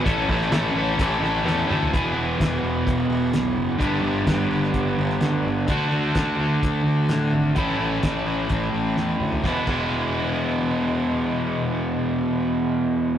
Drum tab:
CC |----------------|----------------|----------------|----------------|
HH |x---x---x-------|x---x---x---x---|x---x---x---x---|x---x---x---x---|
SD |---oo-----o-o---|----o-------o---|----o--o---oo---|----o-------o---|
T2 |--------------o-|----------------|----------------|----------------|
FT |---------------o|----------------|----------------|----------------|
BD |o-o-----o-------|o---o---o-------|o---o---o-------|o---o---o-------|

CC |----------------|--x-------------|----------------|
HH |x---x---x-------|----------------|----------------|
SD |----o-------o---|o---------------|----------------|
T2 |--------------o-|----------------|----------------|
FT |---------------o|----------------|----------------|
BD |o---o---o-------|o-o-------------|----------------|